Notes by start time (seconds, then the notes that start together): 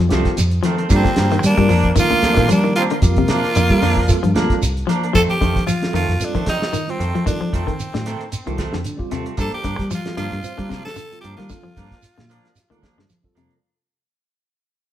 0.00 F3
0.09 C2 D#3 G3 A3 C4 F4 G4, snare, closed hi-hat, shekere
0.25 kick, snare, closed hi-hat
0.37 F2, snare, closed hi-hat, shekere
0.51 closed hi-hat
0.63 D#3 F3 A3 C4, snare, closed hi-hat, shekere
0.78 A3 C4, closed hi-hat
0.89 G2 F3 G3 A#3 C4 D4 F4 A4, kick, closed hi-hat, shekere
0.93 G3 C4
1.04 D3, kick, snare, closed hi-hat
1.16 G2 F3 A#3, snare, closed hi-hat, shekere
1.31 D#3, snare, closed hi-hat
1.43 G3 D4, snare, closed hi-hat, shekere
1.47 A#3
1.58 G2 G3 C4 F4 A#4, kick, closed hi-hat
1.69 F2 F3 A#3 D4, open hi-hat, shekere
1.84 kick, closed hi-hat
1.95 D#3 G3 A#3 C4 F4 A4, kick, closed hi-hat, shekere
1.99 F4
2.10 D2 D3, closed hi-hat
2.22 D2 F3 G3 A#3 C4 D4 F4 A4, snare, closed hi-hat, shekere
2.36 A#2 D#3 A#3 D4, kick, snare, closed hi-hat
2.49 F3 G3 A#3 D4, closed hi-hat, shekere
2.64 D#3
2.76 F3 A#3 C4 D4 F4, closed hi-hat, shekere
2.90 D3 A#3 F4, closed hi-hat
3.02 F2 G3 C4 F4 G4, kick, closed hi-hat, shekere
3.16 C3, kick, closed hi-hat
3.28 C3 F3 A#3 D4, snare, closed hi-hat, shekere
3.43 snare
3.55 F2 D3, snare, closed hi-hat, shekere
3.68 G3 C4 F4 A4, kick, closed hi-hat
3.82 F2 D3 F3 A#3 D4, open hi-hat, shekere
3.97 kick
4.07 G3 C4 F4 A4, kick, closed hi-hat, shekere
4.23 G2 F3, closed hi-hat
4.35 D2 G3 A#3 C4 D4 F4 A4, muted clean electric guitar stroke, snare, closed hi-hat, shekere
4.50 kick, snare, closed hi-hat
4.62 C2, closed hi-hat, shekere
4.77 closed hi-hat
4.87 F3 A#3 D4, snare, closed hi-hat, shekere
5.03 A#3 D4, closed hi-hat
5.13 F2 D#3 F3 A3 C4 A4, kick, closed hi-hat, shekere
5.30 G4, muted fingered electric bass stroke, closed hi-hat
5.41 F2 D3 D#3 A3 C4, kick, closed hi-hat, shekere
5.56 F3, kick, snare, closed hi-hat
5.66 F3 F4, closed hi-hat, shekere
5.81 G3 C4 F4 A4, snare, closed hi-hat
5.93 F2 D#3 A3 C4 F4, closed hi-hat, shekere
6.09 F2, snare, closed hi-hat
6.20 G3 C4 F4 A4, muted fingered electric bass stroke, closed hi-hat, shekere
6.25 D4
6.35 D#3 F3 A3 C4, kick, closed hi-hat
6.46 D#3 C4 D#4, kick, snare, closed hi-hat, shekere
6.62 snare
6.73 D#3 F4 A4, closed hi-hat, shekere
6.88 G3 C4 F4 C5, closed hi-hat
6.99 F2 D#3 A3 C4, closed hi-hat, shekere
7.14 F3 A3 C4, closed hi-hat
7.26 D#3 G3 C4 D4 F4 A4, kick, closed hi-hat, shekere
7.41 F3, muted fingered electric bass stroke
7.53 F2 D#3 A3 C4, kick, closed hi-hat, shekere
7.67 D#3, kick, closed hi-hat
7.79 muted fingered electric bass stroke, closed hi-hat, shekere
7.94 A2 D3, snare, closed hi-hat
8.06 D#3 A3 C4, snare, closed hi-hat, shekere
8.21 closed hi-hat
8.32 closed hi-hat, shekere
8.46 C2 D#3 G3 A3 C4 F4 G4, closed hi-hat
8.57 D#3 A3 C4, kick, snare, closed hi-hat, shekere
8.73 F2 D3, snare
8.84 D3, closed hi-hat, shekere
8.97 G3 C4 F4 G4, kick
9.11 D#2 C3 A3 C4, snare, closed hi-hat, shekere
9.26 A3 C4, closed hi-hat
9.37 G2 F3 A#3 D4 A4, muted clean electric guitar stroke, kick, closed hi-hat, shekere
9.52 G4, muted fingered electric bass stroke, closed hi-hat
9.62 G2 D3 F3 A#3 D4, kick, snare, closed hi-hat, shekere
9.79 G3, kick, snare, closed hi-hat
9.91 F3 F4, snare, closed hi-hat, shekere
10.05 G3 C4 F4 A4, snare, closed hi-hat
10.17 G2 D3 F3 A#3 D4 F4, snare, closed hi-hat, shekere
10.32 G2, closed hi-hat
10.43 G3 C4 F4 C5, closed hi-hat, shekere
10.58 D3 G3 A#3 D4, kick, closed hi-hat
10.69 C3 F3 A#3 D4, kick, snare, closed hi-hat, shekere
10.85 A4, snare
10.96 D3 F4 A4, closed hi-hat, shekere
11.12 G3 C4 F4 A4, closed hi-hat
11.21 G2 F3 A#3 D4 G4, closed hi-hat, shekere
11.36 D#3 G3 A#3 D4 F4, snare, closed hi-hat
11.49 D3 G3 C4 F4 A4, kick, closed hi-hat, shekere
11.63 F3, muted fingered electric bass stroke
11.76 G2 F3 A#3 D4, kick, closed hi-hat, shekere
11.91 kick, snare, closed hi-hat
12.02 muted fingered electric bass stroke, closed hi-hat, shekere
12.18 A#2 D3, snare, closed hi-hat
12.29 F3 A#3 D4, closed hi-hat, shekere
12.45 snare, closed hi-hat
12.56 snare, closed hi-hat, shekere
12.70 D2 D#3 G3 A#3 C4 D4 F4 A4, closed hi-hat
12.82 F3 A#3 D4, kick, snare, closed hi-hat, shekere
12.98 G2 D3, snare
13.09 F3, snare, closed hi-hat, shekere
13.23 G3 C4 F4 A4, kick
13.35 F2 C3 F3 A#3 D4, closed hi-hat, shekere
13.51 closed hi-hat